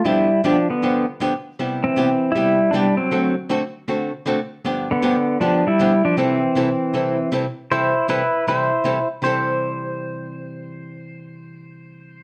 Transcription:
X:1
M:4/4
L:1/16
Q:"Swing" 1/4=157
K:C
V:1 name="Pedal steel guitar"
[G,E]4 [F,D]2 [D,B,]4 z6 | z2 [E,C]6 [G,E]4 [G,D]2 [^F,C]2- | [^F,C]2 z12 z2 | z2 [D,B,]6 [F,D]2 [G,E]4 [F,D]2 |
[E,C]12 z4 | [Ec]4 [EB]4 [Ec]6 z2 | c16- | c16 |]
V:2 name="Hollow-body jazz guitar"
[G,,D,F,B,DG]2 z2 [G,,D,F,B,DG] z3 [G,,D,F,B,DG]2 z2 [G,,D,F,B,DG] z3 | [C,G,B,EG]2 z2 [C,G,B,EG] z3 [C,G,B,EG]2 z2 [C,G,B,EG] z3 | [D,A,C^FA]2 z2 [D,A,CFA] z3 [D,A,CFA]2 z2 [D,A,CFA] z3 | [G,,D,F,B,DG]2 z2 [G,,D,F,B,DG] z3 [G,,D,F,B,DG]2 z2 [G,,D,F,B,DG] z3 |
[C,E,G,CEA]2 z2 [C,E,G,CEA] z3 [C,E,G,CEA]2 z2 [C,E,G,CEA] z3 | [C,E,G,CEA]2 z2 [C,E,G,CEA] z3 [C,E,G,CEA]2 z2 [C,E,G,CEA] z3 | [C,E,G,CEA]16- | [C,E,G,CEA]16 |]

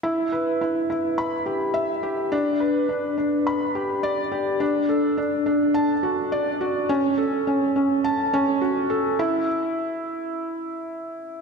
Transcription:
X:1
M:4/4
L:1/8
Q:1/4=105
K:Edor
V:1 name="Felt piano"
E B E E b G e G | D B D D b G d G | D A D D a F d F | C A C C a C F A |
E z6 z |]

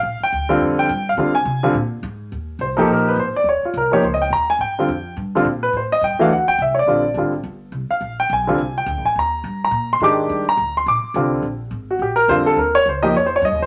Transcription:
X:1
M:4/4
L:1/8
Q:"Swing" 1/4=211
K:Ablyd
V:1 name="Grand piano"
f g3 z g2 f- | f a3 z4 | [K:Eb] z2 c =A B _c =c d | _d F B d (3c e g b a |
g4 z3 _c | c e g f _g =g =e [_d=d]- | [_d=d]2 z4 z f- | f g a3 g2 a |
b3 b2 c' d'2- | d' b2 c' d'3 z | z3 _G =G B c =A | B _d c e (3d c d e c |]
V:2 name="Grand piano"
z3 [D,G,CF]3 z2 | [D,G,CF] z2 [D,G,CF] z4 | [K:Eb] z3 [F,B,EG]3 z2 | z3 [F,B,EG] z4 |
z [D,G,CF] z3 [D,G,CF] z2 | z3 [=E,=A,D_G] z4 | [D,G,CF] z [D,G,CF] z4 z | z3 [D,G,CF] z4 |
z6 [E,A,DG]2- | [E,A,DG] z4 z [D,G,CF]2 | z6 [D,G,CF]2 | z3 [F,B,EG] z4 |]
V:3 name="Upright bass" clef=bass
B,,, z D,,2 F,,2 G,,2 | D,2 C,2 B,,2 A,,2 | [K:Eb] E,,2 C,,2 B,,,2 A,,, z | E,, z C,,2 _D,,2 E,,2 |
A,,2 F,,2 G,,2 B,,2 | =A,,2 G,, z D,,2 C,,2 | B,,,2 A,,,2 G,,,2 C,, z | B,,,2 _C,,2 =C,,2 (3D,, B,,, A,,, |
E,,2 G,,2 B,,2 A,,2 | G,,2 D,,2 B,,, z C,,2 | B,,,2 A,,,2 B,,,2 F,,2 | E,,2 _D,,2 F,,2 (3G,, E,, D,, |]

